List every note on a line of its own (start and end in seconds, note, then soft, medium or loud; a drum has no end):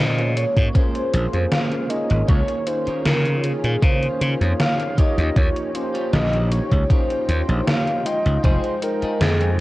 0.00 0.44 A#2 loud
0.00 2.26 G#3 medium
0.00 0.13 A#3 medium
0.00 4.94 A#3 medium
0.00 0.13 C#4 medium
0.00 0.27 C#4 medium
0.00 8.40 C#4 medium
0.00 0.13 F4 medium
0.00 0.14 G#4 medium
0.00 0.27 G#4 medium
0.00 0.27 A#4 medium
0.00 0.14 C5 medium
0.00 0.28 C5 medium
0.00 0.38 D#5 medium
0.17 0.70 A#3 medium
0.17 0.70 C#4 medium
0.17 0.71 F4 medium
0.17 0.71 G#4 medium
0.17 0.71 C#5 medium
0.17 closed hi-hat soft
0.37 0.76 C#5 medium
0.37 closed hi-hat loud
0.56 0.68 G#2 medium
0.56 kick medium
0.56 closed hi-hat soft
0.74 1.28 A#3 medium
0.74 1.33 C#4 medium
0.74 1.28 C#4 medium
0.74 1.29 F4 medium
0.74 1.33 G#4 medium
0.74 1.29 G#4 medium
0.74 1.33 A#4 medium
0.74 1.54 C5 loud
0.74 1.34 C5 medium
0.74 1.29 C5 loud
0.74 kick loud
0.74 closed hi-hat medium
0.95 closed hi-hat soft
1.13 1.26 A#1 medium
1.13 closed hi-hat loud
1.32 1.45 F2 medium
1.32 1.85 A#3 medium
1.32 1.85 C#4 medium
1.32 1.86 F4 medium
1.32 1.86 G#4 medium
1.32 1.86 C5 loud
1.32 closed hi-hat soft
1.52 1.91 F5 loud
1.52 snare loud
1.52 closed hi-hat medium
1.72 closed hi-hat soft
1.89 2.62 A#3 loud
1.89 2.63 C#4 loud
1.89 2.62 D#4 medium
1.89 2.63 F4 medium
1.89 2.63 G#4 medium
1.89 2.28 D#5 loud
1.89 muted clean electric guitar stroke soft
1.89 closed hi-hat medium
2.10 2.22 G#1 medium
2.10 muted clean electric guitar stroke medium
2.10 closed hi-hat soft
2.28 2.41 C#2 loud
2.28 4.95 D#3 medium
2.28 2.58 D#4 loud
2.28 4.95 F4 medium
2.28 2.58 F4 medium
2.28 2.58 A#4 loud
2.28 2.68 C#5 loud
2.28 2.58 C#5 loud
2.28 kick loud
2.28 closed hi-hat medium
2.48 closed hi-hat soft
2.67 3.21 A#3 medium
2.67 3.21 C#4 loud
2.67 3.21 D#4 medium
2.67 3.21 F4 medium
2.67 3.21 G#4 medium
2.67 3.07 C5 medium
2.67 closed hi-hat medium
2.86 3.34 D#4 medium
2.86 3.35 F4 medium
2.86 3.35 A#4 medium
2.86 3.35 C#5 medium
2.86 muted slap bass stroke soft
2.86 closed hi-hat soft
3.05 3.52 C#3 loud
3.05 3.46 A#4 medium
3.05 snare loud
3.05 closed hi-hat medium
3.25 3.78 A#3 medium
3.25 3.78 D#4 medium
3.25 3.78 F4 medium
3.25 3.78 G#4 medium
3.25 3.78 C#5 medium
3.25 closed hi-hat soft
3.44 3.84 G#4 medium
3.44 closed hi-hat loud
3.64 3.75 A#2 medium
3.64 closed hi-hat soft
3.82 4.06 C#3 loud
3.82 4.36 A#3 medium
3.82 4.37 C#4 loud
3.82 4.41 D#4 medium
3.82 4.36 D#4 medium
3.82 4.41 F4 medium
3.82 4.36 F4 medium
3.82 4.36 G#4 medium
3.82 4.41 A#4 medium
3.82 4.59 C5 loud
3.82 4.41 C#5 medium
3.82 kick loud
3.82 closed hi-hat medium
4.03 closed hi-hat soft
4.21 4.33 C#3 medium
4.21 closed hi-hat loud
4.41 4.52 F2 medium
4.41 4.93 A#3 medium
4.41 4.94 D#4 medium
4.41 4.94 F4 medium
4.41 4.94 G#4 medium
4.41 4.94 C#5 loud
4.41 closed hi-hat soft
4.59 4.99 F5 loud
4.59 snare loud
4.59 closed hi-hat medium
4.79 closed hi-hat soft
4.97 9.60 F3 medium
4.97 5.70 A#3 loud
4.97 5.74 D#4 medium
4.97 9.60 D#4 medium
4.97 5.71 D#4 medium
4.97 5.75 F4 medium
4.97 5.71 F4 medium
4.97 5.75 G4 medium
4.97 5.71 G4 medium
4.97 5.75 C#5 loud
4.97 5.71 C#5 loud
4.97 5.38 D#5 loud
4.97 9.60 G5 medium
4.97 kick loud
4.97 closed hi-hat medium
5.18 5.29 D#2 medium
5.18 closed hi-hat soft
5.36 5.48 D#2 loud
5.36 5.77 C#5 loud
5.36 kick loud
5.36 closed hi-hat medium
5.56 closed hi-hat soft
5.75 6.29 A#3 medium
5.75 6.29 C#4 loud
5.75 6.29 D#4 medium
5.75 6.29 F4 medium
5.75 6.29 G4 medium
5.75 6.15 C5 medium
5.75 closed hi-hat medium
5.94 6.42 D#4 medium
5.94 6.42 F4 medium
5.94 6.43 G4 medium
5.94 6.43 C#5 medium
5.94 closed hi-hat soft
6.13 6.59 A#1 loud
6.13 6.51 D#5 loud
6.13 snare loud
6.13 closed hi-hat medium
6.33 6.86 A#3 medium
6.33 6.86 D#4 medium
6.33 6.86 F4 medium
6.33 6.86 G4 medium
6.33 6.87 C#5 medium
6.33 closed hi-hat soft
6.52 6.92 C#5 medium
6.52 closed hi-hat medium
6.71 6.83 C#2 medium
6.71 kick medium
6.71 closed hi-hat soft
6.90 7.44 A#3 medium
6.90 7.45 C#4 loud
6.90 7.48 D#4 medium
6.90 7.44 D#4 medium
6.90 7.49 F4 medium
6.90 7.44 F4 medium
6.90 7.49 G4 medium
6.90 7.44 G4 medium
6.90 7.68 C5 loud
6.90 7.49 C#5 loud
6.90 kick loud
6.90 closed hi-hat medium
7.10 closed hi-hat soft
7.29 7.41 D#2 medium
7.29 closed hi-hat medium
7.48 7.60 A#1 medium
7.48 8.01 A#3 medium
7.48 8.01 D#4 medium
7.48 8.01 F4 medium
7.48 8.02 G4 medium
7.48 8.02 C#5 loud
7.48 closed hi-hat soft
7.67 7.99 F5 loud
7.67 snare loud
7.67 closed hi-hat medium
7.87 closed hi-hat soft
7.99 8.07 F5 medium
8.05 8.78 G#3 loud
8.05 8.78 D#4 medium
8.05 8.78 F4 medium
8.05 8.44 D#5 loud
8.05 8.78 G5 medium
8.05 8.78 C6 loud
8.05 muted clean electric guitar stroke soft
8.05 closed hi-hat medium
8.25 8.37 C#2 medium
8.25 muted clean electric guitar stroke medium
8.25 closed hi-hat soft
8.43 8.56 F1 loud
8.43 9.60 G#3 medium
8.43 8.73 F4 loud
8.43 8.73 G4 loud
8.43 8.73 G#4 loud
8.43 8.84 C5 loud
8.43 8.74 D#5 loud
8.43 kick loud
8.43 closed hi-hat medium
8.64 closed hi-hat soft
8.82 9.36 G#3 medium
8.82 9.36 D#4 medium
8.82 9.36 F4 medium
8.82 9.22 A#4 medium
8.82 9.36 C5 medium
8.82 9.36 G5 medium
8.82 closed hi-hat medium
9.02 9.50 F4 medium
9.02 9.50 G4 medium
9.02 9.50 G#4 medium
9.02 9.51 D#5 medium
9.02 muted slap bass stroke soft
9.02 closed hi-hat soft
9.21 9.60 F2 loud
9.21 9.60 G#4 loud
9.21 snare loud
9.21 closed hi-hat medium
9.40 9.60 G#3 medium
9.40 9.60 D#4 medium
9.40 9.60 F4 medium
9.40 9.60 C5 medium
9.40 9.60 G5 medium
9.40 closed hi-hat soft